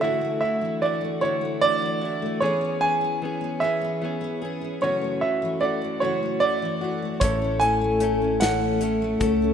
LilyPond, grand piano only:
\new Staff \with { instrumentName = "Grand piano" } { \time 6/8 \key fis \minor \tempo 4. = 50 e''8 e''8 d''8 cis''8 d''4 | cis''8 gis''4 e''4 r8 | cis''8 e''8 d''8 cis''8 d''4 | cis''8 gis''4 fis''4 r8 | }